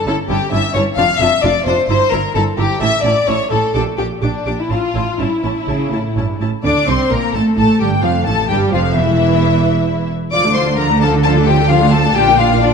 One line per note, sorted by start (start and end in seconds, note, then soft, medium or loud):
0.06 0.14 G1 medium
0.06 0.14 G2 medium
0.06 0.14 C#4 soft
0.06 0.15 E4 medium
0.06 0.15 A4 medium
0.06 0.15 A5 medium
0.29 0.37 G1 medium
0.29 0.37 G2 medium
0.29 0.38 C#4 soft
0.29 0.37 E4 soft
0.29 0.51 G4 medium
0.29 0.39 A5 soft
0.51 0.60 G1 medium
0.51 0.59 G2 medium
0.51 0.60 C#4 medium
0.51 0.60 E4 medium
0.51 0.74 E5 medium
0.51 0.62 A5 soft
0.74 0.82 G1 medium
0.74 0.82 G2 medium
0.74 0.83 C#4 soft
0.74 0.83 E4 soft
0.74 0.82 C#5 medium
0.74 0.85 A5 soft
0.96 1.05 F1 medium
0.96 1.05 F2 medium
0.96 1.05 D4 medium
0.96 1.06 F4 medium
0.96 1.19 F5 medium
0.96 1.07 A5 medium
1.19 1.28 F1 medium
1.19 1.28 F2 medium
1.19 1.29 D4 soft
1.19 1.29 F4 soft
1.19 1.43 E5 medium
1.19 1.30 A5 soft
1.43 1.51 F1 medium
1.43 1.51 F2 medium
1.43 1.52 D4 medium
1.43 1.52 F4 medium
1.43 1.66 D5 medium
1.43 1.52 A5 medium
1.66 1.74 F1 medium
1.66 1.74 F2 medium
1.66 1.75 D4 soft
1.66 1.75 F4 soft
1.66 1.87 C5 medium
1.66 1.75 A5 medium
1.88 1.97 G1 medium
1.88 1.97 G2 medium
1.88 1.98 E4 medium
1.88 2.11 C5 medium
1.88 1.98 A#5 medium
2.12 2.20 G1 medium
2.12 2.20 G2 medium
2.12 2.21 E4 medium
2.12 2.35 A#4 medium
2.12 2.20 A#5 soft
2.35 2.43 G1 medium
2.35 2.43 G2 medium
2.35 2.44 E4 medium
2.35 2.43 A4 medium
2.35 2.43 A#5 medium
2.57 2.66 G1 medium
2.57 2.66 G2 medium
2.57 2.66 E4 soft
2.57 2.81 G4 medium
2.57 2.65 A#5 medium
2.81 2.89 A1 medium
2.81 2.89 A2 medium
2.81 2.89 C#4 medium
2.81 2.89 E4 medium
2.81 3.04 E5 medium
2.81 2.89 A5 medium
3.04 3.12 A1 medium
3.04 3.12 A2 medium
3.04 3.12 C#4 soft
3.04 3.12 E4 soft
3.04 3.27 D5 medium
3.04 3.12 A5 soft
3.27 3.36 A1 medium
3.27 3.35 A2 medium
3.27 3.36 C#4 soft
3.27 3.35 E4 soft
3.27 3.51 C#5 medium
3.27 3.36 A5 soft
3.50 3.59 A1 soft
3.50 3.59 A2 soft
3.50 3.58 C#4 soft
3.50 3.58 E4 soft
3.50 3.73 A4 medium
3.50 3.59 A5 soft
3.74 3.82 A#1 soft
3.74 3.82 A#2 medium
3.74 3.82 D4 soft
3.74 3.82 G4 soft
3.74 3.82 A4 medium
3.74 3.82 D6 soft
3.97 4.05 A#1 soft
3.97 4.05 A#2 soft
3.97 4.06 D4 soft
3.97 4.05 G4 medium
3.97 4.06 G4 soft
3.97 4.06 D6 soft
4.21 4.29 A#1 soft
4.21 4.29 A#2 soft
4.21 4.57 D4 medium
4.21 4.30 D4 soft
4.21 4.30 G4 soft
4.21 4.30 D6 soft
4.45 4.54 A#1 soft
4.45 4.53 A#2 soft
4.45 4.54 D4 soft
4.45 4.54 G4 soft
4.45 4.54 D6 soft
4.59 4.71 E4 medium
4.70 4.78 A1 soft
4.70 4.78 A2 soft
4.70 4.78 C#4 soft
4.70 4.78 E4 soft
4.70 5.19 F4 medium
4.70 4.79 A5 soft
4.95 5.03 A1 soft
4.95 5.03 A2 soft
4.95 5.03 C#4 soft
4.95 5.03 E4 soft
4.95 5.03 A5 soft
5.19 5.27 A1 soft
5.19 5.27 G2 medium
5.19 5.28 C#4 soft
5.19 6.41 E4 medium
5.19 5.28 E4 soft
5.19 5.27 A5 soft
5.43 5.52 A1 soft
5.43 5.51 A2 soft
5.43 5.51 C#4 soft
5.43 5.51 E4 soft
5.43 5.52 A5 soft
5.68 5.76 A1 soft
5.68 5.92 C#3 medium
5.68 5.76 C#4 soft
5.68 5.76 E4 soft
5.68 5.77 A5 soft
5.92 6.00 A1 soft
5.92 6.16 A2 soft
5.92 6.00 C#4 soft
5.92 6.00 E4 soft
5.92 6.01 A5 soft
6.16 6.24 A1 soft
6.16 6.40 G2 soft
6.16 6.24 C#4 soft
6.16 6.25 E4 soft
6.16 6.26 A5 soft
6.40 6.49 A1 soft
6.40 6.48 A2 soft
6.40 6.49 C#4 soft
6.40 6.49 E4 soft
6.40 6.49 A5 soft
6.64 6.72 D2 medium
6.64 6.72 D3 medium
6.64 6.86 D4 medium
6.64 6.86 D5 medium
6.64 6.87 D6 medium
6.87 6.96 C2 medium
6.87 6.95 C3 medium
6.87 7.11 C4 medium
6.87 7.11 C5 medium
6.87 7.11 C6 medium
7.10 7.19 A#1 medium
7.10 7.18 A#2 medium
7.10 7.34 A#3 medium
7.10 7.34 A#4 medium
7.10 7.34 A#5 medium
7.34 7.42 A1 medium
7.34 7.42 A2 medium
7.34 7.57 A3 medium
7.34 7.55 A4 medium
7.34 7.43 A5 medium
7.56 7.66 A1 medium
7.56 7.64 A2 medium
7.56 7.80 A3 medium
7.56 7.79 A4 medium
7.56 7.80 A5 medium
7.80 8.03 G1 medium
7.80 8.03 G2 medium
7.80 7.89 G3 medium
7.80 7.88 G4 medium
7.80 8.03 G5 medium
8.03 8.26 F1 medium
8.03 8.26 F2 medium
8.03 8.11 F3 medium
8.03 8.11 F4 medium
8.03 8.26 F5 medium
8.26 8.49 A1 medium
8.26 8.49 A2 medium
8.26 8.34 A3 medium
8.26 8.49 A4 medium
8.26 8.49 A5 medium
8.49 8.58 G1 medium
8.49 8.58 G2 medium
8.49 8.72 G3 medium
8.49 8.72 G4 medium
8.49 8.57 G5 medium
8.72 8.95 F1 medium
8.72 8.95 F2 medium
8.72 8.95 F3 medium
8.72 8.81 F4 medium
8.72 8.95 F5 medium
8.95 10.10 E1 medium
8.95 10.10 E2 medium
8.95 10.10 E3 medium
8.95 10.07 E4 medium
8.95 10.09 E5 medium
10.32 12.12 D2 medium
10.32 12.12 D3 medium
10.32 10.43 F3 medium
10.32 10.43 F4 medium
10.32 10.53 D5 medium
10.32 10.53 D6 medium
10.43 10.55 A3 soft
10.43 10.55 D4 soft
10.54 10.66 F3 medium
10.54 10.66 F4 medium
10.54 10.77 C5 medium
10.54 10.78 C6 medium
10.67 10.78 A3 soft
10.67 10.78 D4 soft
10.76 10.89 F3 medium
10.76 10.89 F4 medium
10.76 10.84 A#4 medium
10.76 11.00 A#5 medium
10.89 11.01 A3 soft
10.89 11.01 D4 soft
11.00 11.13 F3 soft
11.00 11.13 F4 soft
11.00 11.22 A4 medium
11.00 11.09 A5 medium
11.13 11.24 A3 soft
11.13 11.24 D4 soft
11.23 11.35 F3 medium
11.23 11.35 F4 medium
11.23 11.46 A4 medium
11.23 11.31 A5 loud
11.36 11.47 A3 medium
11.36 11.47 D4 soft
11.46 11.58 F3 medium
11.46 11.58 F4 medium
11.46 11.70 G4 medium
11.46 11.69 G5 medium
11.58 11.70 A3 medium
11.58 11.70 D4 soft
11.68 11.80 F3 medium
11.68 11.80 F4 medium
11.68 11.92 F4 medium
11.68 11.92 F5 medium
11.81 11.92 A3 medium
11.81 11.92 D4 medium
11.91 12.04 F3 medium
11.91 12.04 F4 medium
11.91 12.16 A4 medium
11.91 12.15 A5 medium
12.04 12.16 A3 medium
12.04 12.15 D4 medium
12.14 12.74 A#1 medium
12.14 12.74 A#2 medium
12.14 12.27 D4 medium
12.14 12.27 F4 medium
12.14 12.38 G4 medium
12.14 12.38 G5 loud
12.28 12.39 A#3 medium
12.28 12.38 D4 medium
12.38 12.49 D4 medium
12.38 12.50 F4 medium
12.38 12.61 F4 medium
12.38 12.61 F5 medium
12.50 12.62 A#3 soft
12.50 12.61 D4 medium
12.60 12.74 D4 medium
12.60 12.72 D4 medium
12.60 12.72 F4 medium
12.60 12.74 D5 medium